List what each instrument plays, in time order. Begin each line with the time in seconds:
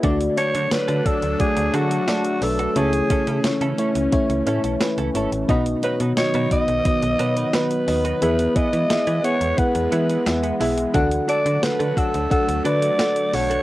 0.03 fm bass D2, fm electric piano D3 A3 D4 F#4 D5, analog synth pad F#3 A3 D4, clean electric guitar D4 F#4 A4, kick, closed hi-hat
0.21 closed hi-hat
0.37 fm electric piano A3 D4 F#4 D5, clean electric guitar D4 F#4 A4, alto saxophone C#5, closed hi-hat
0.54 fm bass D3, clean electric guitar D4 F#4 A4, closed hi-hat
0.71 fm bass D3, fm electric piano A3 D4 F#4 C#5, alto saxophone B4, snare, closed hi-hat, tambourine
0.88 fm bass D3, clean electric guitar D4 F#4 A4, closed hi-hat
1.05 fm electric piano A3 D4 F#4 D5, clean electric guitar D4 F#4 A4, alto saxophone A4, kick, closed hi-hat
1.22 fm bass D2, muted clean electric guitar stroke, closed hi-hat
1.39 fm electric piano A3 D4 F#4 D5, alto saxophone G#4, muted clean electric guitar stroke, kick, closed hi-hat
1.57 fm bass D2, muted clean electric guitar stroke, closed hi-hat
1.73 fm bass D3, fm electric piano A3 D4 F#4 G#4, clean electric guitar D4 F#4 A4, alto saxophone F#4, closed hi-hat
1.90 clean electric guitar D4 F#4 A4, closed hi-hat
2.07 fm electric piano A3 D4 F#4 D5, clean electric guitar D4 F#4 A4, snare, closed hi-hat, tambourine
2.25 muted clean electric guitar stroke, closed hi-hat
2.41 fm bass B1, fm electric piano A3 D4 F#4 B4, alto saxophone A4, muted clean electric guitar stroke, open hi-hat
2.59 clean electric guitar D4 F#4 A4, closed hi-hat
2.75 fm bass C#2, fm electric piano C#3 A3 C#4 E4 C#5, analog synth pad E3 C#4, clean electric guitar C#4 E4 A4, alto saxophone G#4, closed hi-hat
2.93 closed hi-hat
3.09 fm electric piano A3 C#4 E4 C#5, clean electric guitar C#4 E4 A4, kick, closed hi-hat
3.27 fm bass C#3, clean electric guitar C#4 E4 A4, closed hi-hat
3.43 fm bass C#3, fm electric piano A3 C#4 E4 C#5, muted clean electric guitar stroke, snare, closed hi-hat, tambourine
3.61 fm bass C#3, clean electric guitar C#4 E4 A4, closed hi-hat
3.78 fm electric piano A3 C#4 E4 C#5, clean electric guitar C#4 E4 A4, closed hi-hat
3.95 fm bass C#2, muted clean electric guitar stroke, closed hi-hat
4.12 fm electric piano A3 C#4 E4 C#5, muted clean electric guitar stroke, kick, closed hi-hat
4.29 fm bass C#2, muted clean electric guitar stroke, closed hi-hat
4.46 fm bass A2, fm electric piano A3 C#4 E4 C#5, clean electric guitar C#4 E4 A4, closed hi-hat
4.64 fm bass B1, clean electric guitar C#4 E4 A4, closed hi-hat
4.80 fm electric piano A3 C#4 E4 B4, muted clean electric guitar stroke, snare, closed hi-hat, tambourine
4.98 fm bass C#2, clean electric guitar C#4 E4 A4, closed hi-hat
5.14 fm bass G#1, fm electric piano A3 C#4 E4 C#5, clean electric guitar C#4 E4 A4, closed hi-hat
5.32 fm bass A1, closed hi-hat
5.48 fm bass B1, fm electric piano B2 B3 D#4 F#4 D#5, analog synth pad D#3 F#3 B3, clean electric guitar D#4 F#4 B4, kick, closed hi-hat
5.66 closed hi-hat
5.83 fm electric piano B3 D#4 F#4 C#5, clean electric guitar D#4 F#4 B4, alto saxophone B4, closed hi-hat
6.00 fm bass B2, clean electric guitar D#4 F#4 B4, closed hi-hat
6.17 fm electric piano B3 D#4 F#4 D#5, alto saxophone C#5, muted clean electric guitar stroke, snare, closed hi-hat, tambourine
6.34 fm bass B2, clean electric guitar D#4 F#4 B4, closed hi-hat
6.51 fm electric piano B3 D#4 F#4 D#5, clean electric guitar D#4 F#4 B4, alto saxophone D#5, kick, closed hi-hat
6.68 fm bass B1, muted clean electric guitar stroke, closed hi-hat
6.85 fm electric piano B3 D#4 F#4 D#5, muted clean electric guitar stroke, kick, closed hi-hat
7.02 fm bass B1, muted clean electric guitar stroke, closed hi-hat
7.19 fm bass B2, fm electric piano B3 D#4 F#4 C#5, clean electric guitar D#4 F#4 B4, closed hi-hat
7.37 clean electric guitar D#4 F#4 B4, closed hi-hat
7.53 fm electric piano B3 D#4 F#4 D#5, clean electric guitar D#4 F#4 B4, alto saxophone B4, snare, closed hi-hat, tambourine
7.71 closed hi-hat
7.87 fm bass D#2, fm electric piano B3 D#4 F#4 D#5, muted clean electric guitar stroke, open hi-hat
8.05 clean electric guitar D#4 F#4 B4, closed hi-hat
8.21 fm bass E2, fm electric piano E3 B3 E4 G#4 E5, analog synth pad E3 G#3, clean electric guitar B3 E4 G#4, alto saxophone B4, closed hi-hat
8.39 closed hi-hat
8.55 fm electric piano B3 E4 G#4 E5, clean electric guitar B3 E4 G#4, alto saxophone D#5, kick, closed hi-hat
8.73 fm bass E3, clean electric guitar B3 E4 G#4, closed hi-hat
8.89 fm bass E3, fm electric piano B3 E4 G#4 E5, snare, closed hi-hat, tambourine
9.07 fm bass E3, clean electric guitar B3 E4 G#4, closed hi-hat
9.23 fm electric piano B3 E4 G#4 F#5, clean electric guitar B3 E4 G#4, alto saxophone C#5, closed hi-hat
9.41 fm bass E2, closed hi-hat
9.57 fm electric piano B3 E4 G#4 F#5, alto saxophone B4, muted clean electric guitar stroke, kick, closed hi-hat
9.75 fm bass E2, muted clean electric guitar stroke, closed hi-hat
9.92 fm bass E3, fm electric piano B3 E4 G#4 E5, clean electric guitar B3 E4 G#4, closed hi-hat
10.09 clean electric guitar B3 E4 G#4, closed hi-hat
10.26 fm bass E2, fm electric piano B3 E4 G#4 E5, muted clean electric guitar stroke, snare, closed hi-hat, tambourine
10.43 clean electric guitar B3 E4 G#4, closed hi-hat
10.60 fm bass B1, fm electric piano B3 E4 G#4 E5, clean electric guitar B3 E4 G#4, open hi-hat
10.77 muted clean electric guitar stroke, closed hi-hat
10.94 fm bass D2, fm electric piano D3 D4 F#4 A4 F#5, analog synth pad D3 F#3 A3, clean electric guitar D4 F#4 A4, kick, closed hi-hat
11.11 closed hi-hat
11.28 fm electric piano D4 F#4 A4 A5, clean electric guitar D4 F#4 A4, alto saxophone D5, closed hi-hat
11.45 fm bass D3, clean electric guitar D4 F#4 A4, closed hi-hat
11.62 fm bass D3, fm electric piano D4 F#4 A4 F#5, alto saxophone B4, snare, closed hi-hat, tambourine
11.79 fm bass D3, clean electric guitar D4 F#4 A4, closed hi-hat
11.96 clean electric guitar D4 F#4 A4, fm electric piano D4 F#4 A4 F#5, alto saxophone A4, kick, closed hi-hat
12.14 fm bass D2, closed hi-hat
12.30 fm electric piano D4 F#4 A4 F#5, alto saxophone A4, muted clean electric guitar stroke, kick, closed hi-hat
12.48 fm bass D2, muted clean electric guitar stroke, closed hi-hat
12.64 fm bass D3, fm electric piano D4 F#4 A4 B4, clean electric guitar D4 F#4 A4, alto saxophone D5, closed hi-hat
12.82 clean electric guitar D4 F#4 A4, closed hi-hat
12.98 clean electric guitar D4 F#4 A4, fm electric piano D4 F#4 A4 F#5, snare, closed hi-hat, tambourine
13.16 muted clean electric guitar stroke, closed hi-hat
13.33 fm bass B1, fm electric piano D4 F#4 A4 F#5, alto saxophone C#5, muted clean electric guitar stroke, open hi-hat
13.50 clean electric guitar D4 F#4 A4, closed hi-hat